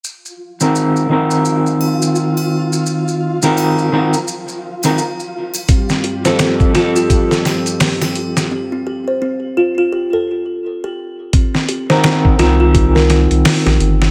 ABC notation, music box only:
X:1
M:4/4
L:1/16
Q:"Swing 16ths" 1/4=85
K:Cdor
V:1 name="Music box"
z16 | z16 | C C G c C2 F F G A z3 G3 | C C G c C2 F F G A z3 G3 |
C C G c C2 F F G B z3 G3 |]